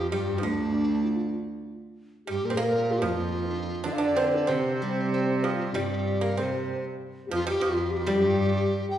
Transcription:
Already playing: cello F2, xiao F4, dizi G4
0.11 cello G2, pipa G3, dizi G4, xiao G4
0.37 pipa F3, xiao D4, dizi F4
0.42 cello D2, pipa D3, dizi D4
1.04 xiao F4
2.26 pipa G3, xiao G4, dizi G4
2.30 cello G2
2.45 cello A#2, dizi A#4
2.50 pipa C4
2.57 cello A#2, pipa A#3, xiao A#4, dizi A#4
2.90 xiao F4, dizi F4
2.98 dizi G4
3.02 cello F2, pipa F3, dizi F4, xiao F4
3.55 pipa D3
3.84 cello D3, pipa D4, xiao D4, dizi D5
3.93 dizi F5
3.98 pipa D4, dizi D5
4.16 pipa C4, xiao C5, dizi C5
4.21 dizi A#4
4.27 xiao C5, dizi C5
4.34 xiao D4, dizi D5
4.47 guzheng C3, cello C3, pipa C4, xiao C5, dizi C5
4.82 guzheng G3
5.14 guzheng C4
5.43 pipa F3, xiao F4, dizi F4
5.74 cello G2, guzheng G3, pipa G3, xiao G4, dizi G4
6.21 pipa A#3, dizi A#4
6.37 cello C3, pipa C4, dizi C5, xiao C5
7.26 xiao F4 G4
7.30 cello F2, pipa F3
7.34 dizi F4
7.47 pipa G3, dizi G4
7.54 xiao G4
7.59 cello F2, pipa F3, xiao F4
7.64 dizi F4
7.90 xiao G4
7.97 dizi G4
8.04 guzheng G3, pipa G3, dizi F4, xiao G4
8.09 cello G2, dizi G4
8.90 dizi G5

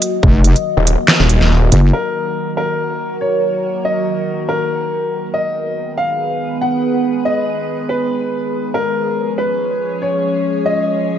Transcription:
Already playing: ambient pad D#3 F#3 A#3 F#4 D#5
0.02 closed hi-hat
0.23 wobble bass F1, kick
0.44 closed hi-hat
0.56 closed hi-hat
0.77 detuned saw bass D#1
0.87 closed hi-hat
1.08 snare, clap
1.20 detuned saw bass D#1
1.29 closed hi-hat
1.41 detuned saw bass D#1, snare
1.72 wobble bass F#1, closed hi-hat
1.93 ambient pad D#3 F#3 A#3 F#4 A#4, grand piano A#4
2.57 grand piano A#4
3.21 grand piano C#5
3.85 grand piano D#5
4.49 grand piano A#4
5.34 ambient pad G#3 B3 G#4 B4, grand piano D#5
5.98 grand piano F5
6.61 grand piano F#5
7.25 grand piano D#5
7.89 grand piano B4
8.74 ambient pad F3 C#4 G#4 C#5, grand piano A#4
9.38 grand piano B4
10.02 grand piano C#5
10.66 grand piano D#5

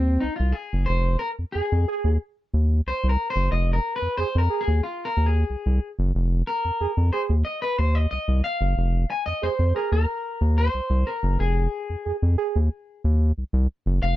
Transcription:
Already playing: analog synth bass D#2, clean electric guitar C4
0.20 analog synth bass C2, clean electric guitar D#4
0.36 analog synth bass C2, clean electric guitar F4
0.52 clean electric guitar G#4
0.73 analog synth bass F#1
0.86 analog synth bass F1, clean electric guitar C5
1.19 clean electric guitar A#4
1.39 analog synth bass F2
1.52 analog synth bass F2, clean electric guitar G#4, trombone G#4
1.72 analog synth bass F2
1.88 trombone G#4
2.04 analog synth bass D#2
2.54 analog synth bass D#2
2.87 analog synth bass C2, clean electric guitar C5
3.04 analog synth bass C2
3.09 clean electric guitar A#4
3.30 clean electric guitar C5
3.36 analog synth bass F#1
3.52 analog synth bass F1, clean electric guitar D#5
3.73 clean electric guitar A#4
3.96 clean electric guitar B4
4.02 analog synth bass F2
4.17 analog synth bass F2, trombone G#4, clean electric guitar C5
4.35 analog synth bass F2, clean electric guitar A#4
4.50 trombone G#4
4.61 clean electric guitar G#4
4.68 analog synth bass D#2
4.83 clean electric guitar F4
5.05 clean electric guitar A#4
5.17 analog synth bass D#2
5.26 clean electric guitar G#4
5.50 analog synth bass C2
5.66 analog synth bass C2
5.99 analog synth bass F#1
6.15 analog synth bass F1
6.47 clean electric guitar A#4
6.65 analog synth bass F2
6.81 analog synth bass F2, trombone G#4
6.97 analog synth bass F2
7.13 trombone G#4, clean electric guitar C5
7.30 analog synth bass D#2
7.45 clean electric guitar D#5
7.62 clean electric guitar B4
7.79 analog synth bass D#2, clean electric guitar C5
7.95 clean electric guitar D#5
8.11 analog synth bass C2, clean electric guitar D#5
8.28 analog synth bass C2
8.44 clean electric guitar F5
8.61 analog synth bass F#1
8.78 analog synth bass F1
9.10 clean electric guitar G#5
9.26 analog synth bass F2, clean electric guitar D#5
9.42 analog synth bass F2, trombone G#4, clean electric guitar C5
9.59 analog synth bass F2
9.75 trombone G#4, clean electric guitar A#4
9.92 analog synth bass D#2, clean electric guitar A#4
10.41 analog synth bass D#2
10.58 clean electric guitar C5
10.74 analog synth bass C2
10.90 analog synth bass C2
11.07 clean electric guitar A#4
11.23 analog synth bass F#1
11.40 analog synth bass F1, clean electric guitar G#4
11.90 analog synth bass F2
12.05 analog synth bass F2, trombone G#4
12.22 analog synth bass F2
12.38 trombone G#4
12.56 analog synth bass D#2
13.04 analog synth bass D#2
13.38 analog synth bass C2
13.53 analog synth bass C2
13.86 analog synth bass F#1
14.03 analog synth bass F1, clean electric guitar F5

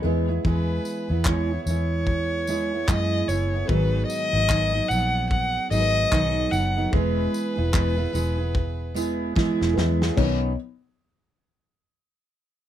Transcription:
0.02 fingered electric bass E2, felt piano G#3 E4, steel-string acoustic guitar G#3 B3 E4 G#4
0.06 felt piano B4
0.28 steel-string acoustic guitar B3 E4 G#4
0.45 fingered electric bass E2, steel-string acoustic guitar E3 G#3 B3 E4 G#4, violin B4, kick
0.85 tambourine
1.09 fingered electric bass E2, steel-string acoustic guitar B3 E4 G#4
1.25 steel-string acoustic guitar E3 G#3 B3 E4 G#4, violin C#5, kick, clap
1.51 steel-string acoustic guitar B3 E4 G#4
1.65 fingered electric bass E2, steel-string acoustic guitar G#3, violin C#5, tambourine
1.69 steel-string acoustic guitar B3 E4 G#4
2.07 kick
2.47 steel-string acoustic guitar G#3 B3 E4 G#4, tambourine
2.73 steel-string acoustic guitar B3 E4 G#4
2.87 fingered electric bass F#2, steel-string acoustic guitar E3 G#3 B3 E4 G#4, violin D#5, kick, clap
3.28 fingered electric bass F#1, steel-string acoustic guitar G#3 B3 E4 G#4, violin C#5, tambourine
3.53 steel-string acoustic guitar B3 E4 G#4
3.66 steel-string acoustic guitar G#2 D#3 F#3, felt piano G#3 F#4, violin B4, kick
3.70 fingered electric bass G#1, steel-string acoustic guitar B3 D#4 G#4, felt piano B4
4.06 violin D#5, tambourine
4.33 fingered electric bass G#1, steel-string acoustic guitar F#3 B3 D#4 G#4
4.50 steel-string acoustic guitar G#2 D#3 F#3 B3 D#4 G#4, kick, clap
4.74 steel-string acoustic guitar F#3 B3 D#4 G#4
4.89 fingered electric bass A#1, steel-string acoustic guitar F#3 B3 D#4 G#4, violin F#5, tambourine
5.30 violin F#5, kick
5.70 fingered electric bass G#1, steel-string acoustic guitar F#3 B3 D#4 G#4, felt piano G#3 F#4 A#4, violin D#5, tambourine
5.79 felt piano B4
6.11 fingered electric bass B1, steel-string acoustic guitar G#2 D#3 F#3 B3 D#4 G#4, kick, clap
6.51 fingered electric bass F#1, steel-string acoustic guitar F#3 B3 D#4 G#4, violin F#5, tambourine
6.76 steel-string acoustic guitar F#3 B3 D#4 G#4
6.91 fingered electric bass E1, steel-string acoustic guitar E3 G#3 B3 E4 G#4, felt piano G#3 E4, violin B4, kick
6.95 felt piano B4
7.34 tambourine
7.56 fingered electric bass E1, steel-string acoustic guitar B3 E4 G#4
7.73 steel-string acoustic guitar E3 G#3 B3 E4 G#4, kick, clap
7.96 steel-string acoustic guitar B3 E4 G#4
8.13 fingered electric bass E1, steel-string acoustic guitar G#3 B3 E4 G#4, tambourine
8.38 steel-string acoustic guitar B3 E4 G#4
8.55 kick
8.94 steel-string acoustic guitar G#3 B3 E4 G#4, tambourine
9.35 steel-string acoustic guitar E3 G#3 B3 E4 G#4, muted fingered electric bass stroke, kick, snare
9.61 fingered electric bass E1, snare
9.74 fingered electric bass E2, felt piano G#3 E4 B4, steel-string acoustic guitar G#3, snare
9.78 steel-string acoustic guitar B3 E4 G#4
10.01 steel-string acoustic guitar B3 E4 G#4, snare
10.16 fingered electric bass B1, steel-string acoustic guitar B2 D#3 F#3 C#4 D#4 B4, felt piano B3 D#4 C#5, kick, crash

